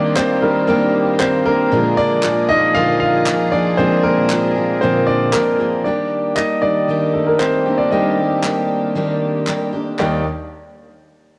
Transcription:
Already playing: D#3 G3 A#3 C4 D4 D#4 F4 G4 C5 D5 D#5
0.16 G3 A#3 C4 D4 G4 C5, clap
0.42 D#3 G3 A#3 D4 A#4
0.67 D#3 G3 A#3 D4 G4 A#4
1.19 G3 A#3 C4 D4 G4 C5, clap
1.45 A#3 D4 G4 A#4
1.71 A#2 D3 F3 G#3 A#3 D4 F4 G#4
1.97 D4 D5
2.23 F3 A#3 F4 G#4, clap
2.49 F3 A#3 D#4 F4 G#4 D#5
2.75 A#2 D3 F3 A#3 F4 G#4 F5
3.00 F4 F5
3.26 F3 A#3 F4 G#4, clap
3.52 F3 A#3 D4 F4 G#4 D5
3.77 A#2 D3 F3 G#3 A#3 C4 D4 F4 G#4 C5
4.03 A#3 A#4
4.29 F3 A#3 F4 G#4, clap
4.55 F3 A#3 F4 G#4
4.81 A#2 D3 F3 A#3 C4 F4 G#4 C5
5.07 D4 D5
5.33 F3 A#3 F4 G#4 A#4, clap
5.58 F3 A#3 F4 G#4
5.84 D#3 G3 A#3 D4 G4 D5
6.36 G3 A#3 D4 D#4 G4 D#5, clap
6.62 D#3 G3 D4 D5
6.88 D#3 G3 A#3 D4 G4
7.13 A3 A4
7.27 A#3 A#4
7.39 G3 A#3 C4 D4 G4 C5, clap
7.66 A#3 D4 G4
7.78 D4 D5
7.91 D#3 G3 A#3 D4 G4 D5 D#5
8.17 A#3 D4 G4
8.43 G3 A#3 D4 G4, clap
8.95 D#3 G3 A#3 D4 G4
9.47 G3 A#3 D4 G4, clap
9.72 A#3 D4 G4
9.99 D#2 D#3 G3 A#3 D4 D#4 G4 A#4 D5, clap

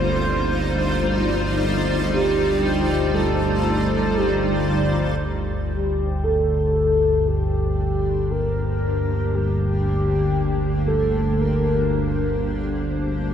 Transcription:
Already playing: G1 D2 G3 A#3 D#4 F4 G4 C5 D5
0.04 C5
2.13 G4
3.14 A4
4.18 G4
5.18 G1 D2 D4
5.75 G4
6.24 A4
6.35 G4
7.28 G4
7.57 A#3
8.31 A#4
9.35 G4
10.88 A4
11.41 A#4

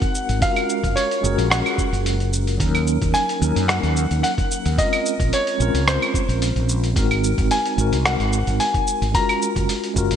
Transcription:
Already playing: G#3 C4 D#4 F#4 A#4 F#5
0.02 kick, open hi-hat, shaker
0.15 shaker
0.29 G#1, open hi-hat, shaker
0.39 G#3 C#4 F4 F#4 F5, kick, open hi-hat, shaker
0.44 A#4
0.56 open hi-hat, claves, shaker
0.69 shaker
0.84 F#1, kick, open hi-hat, shaker
0.96 C#5, open hi-hat, shaker
1.11 open hi-hat, shaker
1.21 F#1 G#3 C#4 F#4 G#4, shaker
1.26 A#4
1.38 A#1, open hi-hat, shaker
1.50 F#5, cross-stick, open hi-hat, shaker
1.66 open hi-hat, claves, shaker
1.78 kick, shaker
1.93 F#1, open hi-hat, shaker
2.06 open hi-hat, shaker
2.20 open hi-hat, shaker
2.33 shaker
2.47 open hi-hat, shaker
2.57 D#2 F#3 A#3 C#4 D#4, kick, open hi-hat, shaker
2.62 A#4
2.75 open hi-hat, claves, shaker
2.87 shaker
3.02 D#2, kick, open hi-hat, shaker
3.14 G#5, open hi-hat, shaker
3.29 open hi-hat, shaker
3.39 D#2 F#3 A#3 C#4 D#4, shaker
3.44 A#4
3.56 F#2, open hi-hat, shaker
3.68 F#5, cross-stick, open hi-hat, shaker
3.83 D#2, open hi-hat, shaker
3.97 shaker
4.11 D#2, open hi-hat, shaker
4.23 F#5, open hi-hat, shaker
4.38 kick, open hi-hat, shaker
4.51 shaker
4.66 D#2, open hi-hat, shaker
4.75 G#3 C4 C#4 F4 D#5, kick, open hi-hat, shaker
4.80 A#4
4.93 open hi-hat, claves, shaker
5.06 shaker
5.20 A#1, kick, open hi-hat, shaker
5.33 C#5, open hi-hat, shaker
5.47 open hi-hat, shaker
5.57 A#1 G#3 C4 C#4 F4, shaker
5.62 A#4
5.74 C#2, open hi-hat, shaker
5.88 C5, cross-stick, open hi-hat, shaker
6.02 open hi-hat, claves, shaker
6.14 kick, shaker
6.29 A#1, open hi-hat, shaker
6.42 open hi-hat, shaker
6.56 A#1, open hi-hat, shaker
6.69 shaker
6.84 open hi-hat, shaker
6.94 G#1 G#3 C4 D#4 F#4, kick, open hi-hat, shaker
6.99 A#4
7.11 open hi-hat, claves, shaker
7.24 shaker
7.38 G#1, kick, open hi-hat, shaker
7.51 G#5, open hi-hat, shaker
7.66 open hi-hat, shaker
7.76 G#1 G#3 C4 D#4 F#4, shaker
7.81 A#4
7.92 C2, open hi-hat, shaker
8.05 F#5, cross-stick, open hi-hat, shaker
8.20 G#1, open hi-hat, shaker
8.33 shaker
8.47 G#1, open hi-hat, shaker
8.60 G#5, open hi-hat, shaker
8.74 kick, open hi-hat, shaker
8.87 shaker
9.02 G#1, open hi-hat, shaker
9.12 G#3 C#4 F4 F#4 A#5, kick, open hi-hat, shaker
9.16 A#4
9.29 open hi-hat, claves, shaker
9.42 shaker
9.56 F#1, kick, open hi-hat, shaker
9.69 open hi-hat, shaker
9.84 open hi-hat, shaker
9.94 F#1 G#3 C#4 F4 F#4, kick, shaker
9.98 A#4
10.11 A#1, open hi-hat, shaker

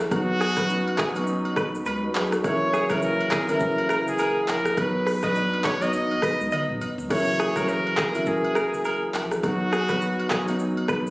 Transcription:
Already playing: F#3 A3 A#3 C#4 E4 F#4 G4 G#4
0.00 cross-stick, shaker
0.10 B1 F#3 B3 D#4 F#4, kick, cross-stick, high agogo, shaker
0.41 G#4, cross-stick, shaker
0.56 F#3 B3 C#4 B4, kick, cross-stick, high agogo, shaker
0.65 D#4, shaker
0.88 high agogo
0.98 B1 G#4, kick, cross-stick, clap, shaker
1.15 F#3 B3 C#4, high agogo, shaker
1.24 D#4, shaker
1.45 high agogo
1.56 B1 B4, kick, cross-stick, shaker
1.75 shaker
1.85 C#2 B4, high agogo, shaker
2.03 F#4 B4
2.15 B1 D#4 G#4, clap, high agogo, shaker
2.32 C#4 F#4, cross-stick, shaker
2.43 F#1 C#3 E3 F#3 A#3 E4 C#5, kick, cross-stick, high agogo, shaker
2.73 G#4, cross-stick, shaker
2.89 F#1 C#3 E3 F#3 A#3 E4 A#4, kick, cross-stick, high agogo, shaker
3.02 A#4, shaker
3.21 high agogo
3.31 G#1 G#4, kick, cross-stick, clap, shaker
3.48 C#3 E3 F#3 A3 E4 A#4, high agogo, shaker
3.56 A#3
3.60 F#1, kick, shaker
3.78 high agogo
3.89 A#4, cross-stick, shaker
4.07 F#1 G#4, shaker
4.18 A#4, high agogo, shaker
4.48 A#1 A#4, clap, high agogo, shaker
4.65 cross-stick, shaker
4.76 B1 F#3 B3 D#4 B4, kick, cross-stick, high agogo, shaker
5.07 B4, cross-stick, open hi-hat, shaker
5.22 F#3 B3 D4 B4 D#5, kick, cross-stick, mid tom, high agogo, shaker
5.31 D#4, shaker
5.53 high agogo
5.64 B1 C#5, kick, cross-stick, clap, shaker
5.81 F#3 B3 D#4 D#5, high agogo, shaker
5.93 B1, shaker
6.11 high agogo
6.22 B4, kick, cross-stick, open hi-hat, shaker
6.40 C#2, shaker
6.52 D#5, high tom, high agogo, shaker
6.69 B1, mid tom
6.81 mid tom, high agogo, shaker
6.98 E1, floor tom, shaker
7.09 F#1 C#3 E3 F#3 A#3 E4 C#5, kick, cross-stick, crash, high agogo
7.40 G#4, cross-stick, shaker
7.55 F#1 C#3 E3 F#3 A3 E4 A#4, kick, cross-stick, high agogo, shaker
7.64 A#3
7.68 A#4, shaker
7.87 high agogo
7.97 G#1 G#4, kick, cross-stick, clap, shaker
8.14 C#3 E3 F#3 A#3 E4, high agogo, shaker
8.26 F#1 G#4, kick, shaker
8.44 high agogo
8.55 A#4, cross-stick, shaker
8.73 F#1, shaker
8.84 A#4, high agogo, shaker
9.14 A#1, clap, high agogo, shaker
9.31 cross-stick, shaker
9.42 B1 F#3 B3 D#4 F#4, kick, cross-stick, high agogo, shaker
9.73 G#4, cross-stick, shaker
9.88 F#3 B3 D#4 B4, kick, cross-stick, high agogo, shaker
10.01 shaker
10.20 high agogo
10.30 B1 G#4, kick, cross-stick, clap, shaker
10.46 F#3 B3 D#4, high agogo, shaker
10.59 shaker
10.77 high agogo
10.88 B1 B4, kick, cross-stick, shaker
11.07 shaker

